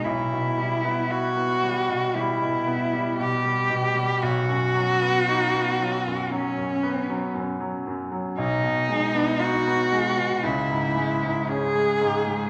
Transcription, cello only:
X:1
M:4/4
L:1/8
Q:1/4=58
K:Elyd
V:1 name="Cello"
E2 F2 E2 =G2 | F4 C2 z2 | [K:G#m] D2 F2 E2 G2 |]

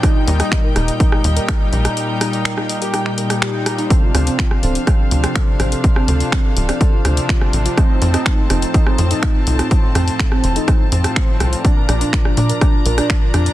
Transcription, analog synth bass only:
X:1
M:4/4
L:1/8
Q:1/4=124
K:Dphr
V:1 name="Analog synth bass" clef=bass
z E,, z E,,, z E,, z B,,, | z8 | z D,, z D,,, z D,, z A,,, | z D,, z D,,, z D,, z A,,, |
z F,, z F,,, z F,, z C,, | z F,, z F,,, z F,, z C,, | z B,,, z B,, z B,,, z F,, |]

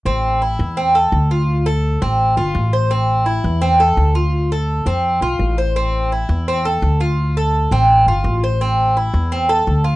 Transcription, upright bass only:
X:1
M:4/4
L:1/8
Q:1/4=168
K:Am
V:1 name="Upright bass" clef=bass
A,,,3 E,,3 D,,2- | D,,3 A,,,2 G,,, A,,,2- | A,,,3 E,,3 D,,2- | D,,3 F,,2 B,,, A,,,2- |
A,,,3 E,,3 D,,2- | D,,3 A,,,2 G,,, A,,,2- | A,,,3 E,,3 D,,2 |]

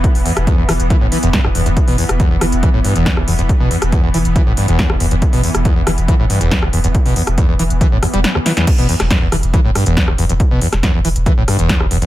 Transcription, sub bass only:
X:1
M:4/4
L:1/16
Q:1/4=139
K:Clyd
V:1 name="Sub bass" clef=bass
z E,,, z E,,, z E,,, E,,, E,,, z E,,, z E,,, z E,,, E,,, E,,, | z E,,, z E,,, z E,,, E,,, E,,, z E,,, z E,,, z E,,, E,,, E,,, | z E,,, z E,,, z E,,, E,,, E,,, z E,,, z E,,, z E,,, E,,, E,,, | z E,,, z E,,, z E,,, E,,, E,,, z E,,, z E,,, z E,,, E,,, E,,, |
z E,,, z E,,, z E,,, E,,, E,,, z E,,, z E,,, z4 | z E,,, z E,,, z E,,, E,,, E,,, z E,,, z E,,, z E,,, E,,, E,,, | z E,,, z E,,, z E,,, E,,, E,,, z E,,, z E,,, z E,,, E,,, E,,, |]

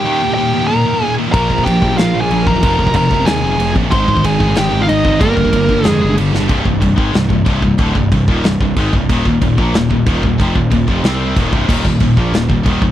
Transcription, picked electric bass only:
X:1
M:4/4
L:1/8
Q:1/4=185
K:Cm
V:1 name="Picked electric bass" clef=bass
z8 | B,,, B,,, B,,, B,,, B,,,2 B,,, E,,, | F,,, F,,, F,,, F,,, E,, F,,, F,,, B,,, | A,,, A,,, A,,, A,,, A,,,2 A,,, A,,, |
G,,, G,,, G,,, G,,, F,, G,,, G,,, G,,, | C,,, C,,, C,,, A,,, C,,, C,,, C,,, C,,, | D,,, C,,, C,,, E,,, C,,, C,,, A,,, C,,, | E,,, E,,, E,,, B,,, E,,, E,,, E,,, E,,, |
F,,, E,,, E,,, F,,, C,,2 E,,, C,,, | E,,, E,,, E,,, B,,, E,,, E,,, E,,, E,,, |]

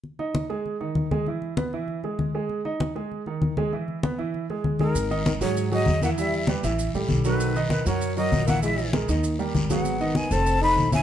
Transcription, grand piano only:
X:1
M:4/4
L:1/8
Q:1/4=196
K:G#m
V:1 name="Grand piano"
z [Dd]2 [G,G]2 [D,D]2 [G,G] | [E,E]2 [B,B] [E,E]2 [G,G]2 [G,G]- | [G,G] [Dd]2 [G,G]2 [D,D]2 [G,G] | [E,E]2 [B,B] [E,E]2 [G,G]2 [G,G] |
z [D,Dd]2 [F,FG]2 [F,FG]2 [E,Ee] | [E,Ee]2 [=G,=GB] [E,Ee]2 [G,G=A]2 [F,FA]- | [F,F=A] [D,Dd]2 [F,F^A]2 [F,FA]2 [E,Ee] | [E,Ee]2 [G,GA] [D,Dd]2 [=G,=GA]2 [F,F^G]- |
[F,FG] [D,Dd]2 [=A,=A^B]2 [A,A=c]2 [E,Ee] |]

